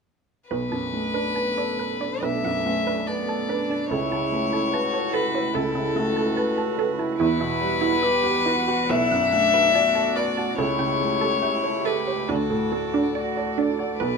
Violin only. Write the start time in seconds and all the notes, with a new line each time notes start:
0.50 B4
2.22 E5
3.07 D5
3.91 C#5
5.13 B4
5.54 A4
7.19 B4
8.90 E5
10.16 D5
10.59 C#5
11.86 B4
12.29 A4
14.00 B4